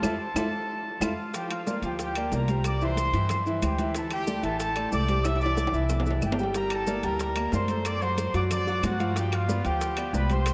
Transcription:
Already playing: A4 A5
0.02 F2 E4 F4 A4, low bongo, high conga, high timbale, claves, maracas
0.34 F2 E4 F4 A4, low bongo, high conga, high timbale, claves, maracas
1.00 F2 E4 F4 A4 F5, low bongo, high conga, high timbale, claves, maracas
1.34 F3 F4 G4 F5 G5, high bongo, high conga, high timbale, maracas
1.50 F4 F5, high bongo, high conga, high timbale, claves, maracas
1.67 A#3 A#4 D5, high bongo, high conga, maracas
1.82 D2 F3 F4 G4 F5 G5, high conga, high timbale, maracas
1.99 G4 G5, high bongo, high conga, high timbale, maracas
2.15 A#3 A#4 D5, high bongo, high conga, high timbale, claves, maracas
2.31 C2 A#3 A#4 D5 A#5, high bongo, low bongo, high conga, low timbale, maracas
2.48 G3 G4 C5, high bongo, high conga, high timbale, maracas
2.64 D5 D6, high bongo, high conga, high timbale, claves, maracas
2.81 E3 E4 C5 E5 C6, high bongo, high conga, maracas
2.97 high bongo, high conga, high timbale, maracas
3.13 G2 E3 E4 E5, high conga, high timbale, maracas
3.29 high bongo, high conga, low conga, high timbale, claves, maracas
3.46 E3 E4 E5, high bongo, high conga, maracas
3.62 D2 G4 G5, high bongo, low bongo, high conga, high timbale, claves, maracas
3.78 E3 E4 E5, high bongo, high conga, high timbale, maracas
3.95 E3 E4 A4 E5 A5, high bongo, high conga, high timbale, maracas
4.11 G4 G5, high bongo, high conga, high timbale, claves, maracas
4.27 A3 A4 D5, high bongo, high conga, maracas
4.43 A1 E3 E4 A4 E5 A5, high conga, high timbale, maracas
4.59 A4 A5, high bongo, high conga, high timbale, maracas
4.76 A3 A4 D5, high bongo, high conga, high timbale, claves, maracas
4.92 C2 A3 A4 D5 D6, high bongo, low bongo, high conga, maracas
5.08 G3 G4 C5, high bongo, high conga, high timbale, maracas
5.24 E5 E6, high bongo, high conga, high timbale, claves, maracas
5.36 high timbale
5.40 E3 E4 D5 E5 D6, high bongo, high conga, maracas
5.46 high timbale
5.57 high bongo, high conga, high timbale, maracas
5.67 high timbale
5.73 C2 E3 E4 E5, high conga, maracas
5.89 high bongo, high conga, low conga, low timbale, claves, maracas
6.00 low timbale
6.06 E3 E4 E5, high bongo, high conga, maracas
6.10 low timbale
6.21 G1 G4 G5, high bongo, low bongo, high conga, claves, maracas
6.32 low timbale
6.38 G3 G4 G5, high bongo, maracas
6.43 low timbale
6.54 G3 G4 A#4 G5 A#5, high bongo, high conga, high timbale, maracas
6.70 A4 A5, high bongo, high conga, high timbale, claves, maracas
6.87 A#3 A#4 D5, high bongo, high conga, maracas
7.03 D2 G3 G4 A#4 G5 A#5, high conga, high timbale, maracas
7.19 A#4 A#5, high bongo, high conga, high timbale, maracas
7.36 A#3 A#4 D5, high bongo, high conga, high timbale, claves, maracas
7.52 F#2 A#3 A#4 C5 D5 C6, high bongo, low bongo, high conga, low timbale, maracas
7.68 A3 A4 C5, high bongo, high conga, high timbale, maracas
7.85 D5 D6, high bongo, high conga, high timbale, claves, maracas
8.01 F#3 F#4 C5 F#5 C6, high bongo, high conga, maracas
8.18 high bongo, high conga, high timbale, maracas
8.34 F#2 F#3 F#4 D5 F#5 D6, high conga, high timbale, maracas
8.51 D5 D6, high bongo, high conga, low conga, high timbale, claves, maracas
8.67 F#3 F#4 F#5, high bongo, high conga, maracas
8.82 G2 F#4 F#5, high bongo, low bongo, high conga, high timbale, low timbale, claves, maracas
8.99 F3 F4 F5, high bongo, high conga, high timbale, maracas
9.16 F3 F4 G4 F5 G5, high bongo, high conga, high timbale, maracas
9.32 F4 F5, high bongo, high conga, high timbale, claves, maracas
9.48 B3 B4 D5, high bongo, high conga, maracas
9.64 D2 F3 F4 G4 F5 G5, high conga, high timbale, maracas
9.81 high bongo, high conga, high timbale, maracas
9.97 B3 B4 D5, high bongo, high conga, high timbale, claves, maracas
10.13 C2 B3 B4 D5 B5, high bongo, low bongo, high conga, maracas
10.30 G3 G4 C5 C6, high bongo, high conga, high timbale, maracas
10.46 high bongo, high conga, high timbale, claves, maracas

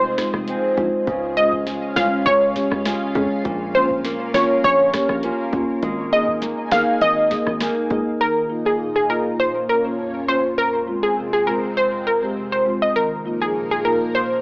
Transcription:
Already playing: F1 F3 C4 D#4 F4 G#4 C5 D#5
0.18 G#3 D#4 F4, kick, cross-stick, snare, closed hi-hat
0.34 F1, cross-stick
0.48 C4 D#4 G#4, closed hi-hat
0.77 A#1 G#3 D#4 F4, kick, closed hi-hat
1.07 C#2 C#3 C#4 F4 F5, kick, closed hi-hat
1.37 G#3 C#4 F4 D#5, closed hi-hat
1.53 kick
1.67 G#3, snare, closed hi-hat
1.96 C2 G#3 C#4 F4 F5, cross-stick, snare, closed hi-hat
2.26 C#2 C#4 C#5, kick, closed hi-hat
2.56 G#3 C#4 G4, kick, snare, closed hi-hat
2.72 C#2, cross-stick
2.86 G#3 C#4 F4, cross-stick, snare, closed hi-hat
3.15 F2 G#3 C#4 G#4, closed hi-hat
3.45 A#1 A#2 A#4, kick, closed hi-hat
3.75 A#3 C#4 F4 C5, closed hi-hat
3.91 kick
4.04 A#3, snare, closed hi-hat
4.34 G#1 A#3 C#4 F4 C#5, cross-stick, snare, closed hi-hat
4.64 A#1 C#4 C#5, kick, closed hi-hat
4.93 A#3 C#4 G4, kick, cross-stick, snare
5.09 A#1, cross-stick
5.23 A#3 C#4 F4, closed hi-hat
5.53 D#2 A#3 C#4 F4, kick, closed hi-hat
5.83 G#1 G#3 D#4 G#4 G#5, kick, closed hi-hat
6.12 A#3 D#4 G#4 D#5, closed hi-hat
6.28 kick
6.42 A#3, snare, closed hi-hat
6.71 G1 A#3 D#4 G#4 F5, cross-stick, snare, closed hi-hat
7.01 G#1 D#4 D#5, kick, closed hi-hat
7.31 A#3 D#4 G#4, kick, snare, closed hi-hat
7.47 G#1, cross-stick
7.60 A#3 D#4 G#4, cross-stick, snare, closed hi-hat
7.90 C#2 A#3 D#4 G#4, kick, closed hi-hat
8.20 D#3 A#3 D#4 F4 A#4 D#5
8.49 A#3 D#4 F4
8.66 G#4
8.80 A#2
8.96 G#4
9.09 A#3 D#4 F4 A#4
9.39 A#2 A#3 C#4 C5 C#5
9.69 C#4 F4 A#4
9.84 A#3 C#4 F4
9.99 F2
10.28 A#3 C#4 F4 C5
10.58 F2 G#3 C4 A#4 C5
10.87 G#3 C4 F4
11.03 G#4
11.17 C3
11.33 G#4
11.47 G#3 C4 F4 A#4
11.77 F2 C5
12.06 C4 F4 A#4
12.22 G#3 C4 G4
12.36 C3
12.52 C5
12.66 G#3 C4 F4
12.82 D#5
12.96 D#3 F3 A#3 D#4 A#4
13.25 A#3 D#4 F4
13.41 G#4
13.55 A#2
13.71 G#4
13.84 A#3 D#4 F4 A#4
14.14 A#2 C#4 C5

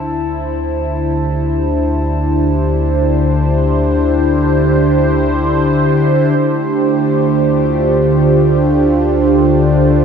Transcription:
Already playing: D2 D3 D4 E4 C5 A5
0.39 G4
6.35 D2 D3 A3
6.82 F4

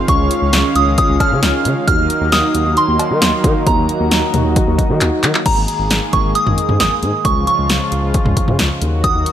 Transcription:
Already playing: D#3 F5 C6
0.08 C#2 G#3 C#4 F4 G#4 C#5 C#6, kick, closed hi-hat
0.20 C#2
0.31 closed hi-hat
0.42 C#2
0.53 C#2, snare, closed hi-hat
0.76 C#2 D#6, closed hi-hat
0.87 C#2
0.98 D#6, kick, closed hi-hat
1.09 C#2
1.20 F6, kick, closed hi-hat, cowbell
1.32 C#3
1.43 C#2, snare, closed hi-hat
1.65 C#3, closed hi-hat
1.88 D#2 D#3 F#3 A#3 D#4 F#4 A#4 D#5 F6, kick, closed hi-hat
1.99 D#2
2.10 closed hi-hat
2.21 D#2
2.32 D#2 D#6, snare, closed hi-hat
2.55 D#2, closed hi-hat
2.66 D#2
2.77 C6, closed hi-hat
2.88 D#2
2.99 closed hi-hat, cowbell
3.11 D#3
3.22 D#2, snare, closed hi-hat
3.44 D#3, kick, closed hi-hat
3.67 D#2 F#4 A#5, kick, closed hi-hat
3.78 D#2
3.89 closed hi-hat
4.00 D#2
4.11 D#2, snare, closed hi-hat
4.34 D#2, closed hi-hat, mid tom
4.45 D#2
4.56 kick, closed hi-hat
4.67 D#2
4.79 kick, closed hi-hat
4.90 D#3
5.01 D#2, clap, closed hi-hat
5.23 D#3, clap, closed hi-hat
5.35 clap
5.46 G#1 D#3 G#3 A#3 G#4 A#5, kick, closed hi-hat, crash
5.57 G#1
5.68 closed hi-hat
5.79 G#1
5.90 G#1, snare, closed hi-hat
6.13 G#1 C#6, kick, closed hi-hat
6.24 G#1
6.35 D#6, closed hi-hat
6.46 G#1, mid tom
6.58 closed hi-hat
6.69 G#2, mid tom
6.80 G#1 D#6, snare, closed hi-hat
7.03 G#2, closed hi-hat
7.25 C#2 C#3 F3 F4 C#6, kick, closed hi-hat
7.36 C#2
7.47 C#6, closed hi-hat
7.59 C#2
7.70 C#2, snare, closed hi-hat
7.92 C#2, closed hi-hat
8.03 C#2
8.14 kick, closed hi-hat
8.26 C#2, mid tom
8.37 kick, closed hi-hat
8.48 C#3, mid tom
8.59 C#2, snare, closed hi-hat
8.81 D#2 D#3 F#3 A#3 F#4, closed hi-hat
9.04 D#6, kick, closed hi-hat
9.15 D#2
9.26 closed hi-hat

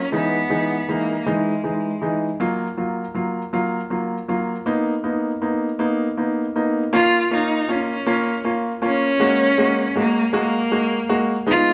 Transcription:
Already playing: C#4
0.12 E3 G#3 B3 D#4
0.50 E3 G#3 D#4
0.88 E3 G#3 A#3 D#4
1.26 E3 G#3 D#4
1.64 E3 G#3 D#4
2.02 E3 G#3 D#4
2.40 F#3 A#3 F4
2.77 F#3 A#3 F4
3.15 F#3 A#3 F4
3.53 F#3 A#3 F4
3.90 F#3 A#3 F4
4.28 F#3 A#3 F4
4.66 A#3 B3 D#4
5.04 A#3 B3 D#4
5.42 A#3 B3 D#4
5.79 A#3 B3 D#4
6.17 A#3 B3 D#4
6.56 A#3 B3 D#4
6.93 A#3 C#4 F4
7.31 A#3 C#4 D#4 F4
7.69 A#3 C#4 F4
8.06 A#3 C#4 F4
8.44 A#3 C#4 F4
8.82 A#3 C#4 F4
8.86 C#4
9.20 G#3 A#3 F#4
9.58 G#3 A#3 F#4
9.96 G#3 A#3 F#4
10.00 A#3
10.33 G#3 A#3 F#4
10.38 A#3
10.71 G#3 A#3 F#4
11.09 G#3 A#3 F#4
11.47 G#3 B3 D#4 F4

